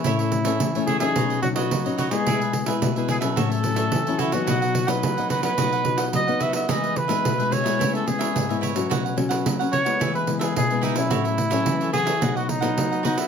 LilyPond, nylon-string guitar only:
\new Staff \with { instrumentName = "Nylon-string guitar" } { \time 4/4 \key b \mixolydian \tempo 4 = 108 << { <a cis' e'>8. <a cis' e'>8 <a cis' e'>8 <fis cis' dis'>8. <fis cis' dis'>8 r16 <fis cis' dis'>8 <gis b e'>16~ | <gis b e'>8. <gis b e'>8 <gis b e'>8 <fis cis' e'>8. <fis cis' e'>8. <fis cis' e'>8 <fis b dis'>16~ | <fis b dis'>8. <fis b dis'>8 <fis b dis'>8 <fis b dis'>16 <fis b dis'>8 <fis b dis'>8 r16 <fis b dis'>8. | <gis b dis'>8 r16 <gis b dis'>8 <gis b dis'>8 <gis b e'>8. <gis b e'>8. <gis b e'>8 <fis cis' fis'>16~ |
<fis cis' fis'>8 <fis cis' fis'>8. <fis cis' fis'>8 <gis b e'>8. <gis b e'>8 r16 <gis b e'>8 <fis cis' e'>16~ | <fis cis' e'>8 r16 <fis cis' e'>8. <fis cis' e'>16 r16 <fis b dis'>8. <fis b dis'>8. <fis b dis'>8 | } \\ { a,4 e4 b,4 fis4 | b,4 b,4 a,4 e4 | b,4 fis4 b,4 fis4 | e4 b,4 cis4 gis,4 |
b,4 fis4 e4 b,4 | a,4 e4 b,4 fis4 | } >> }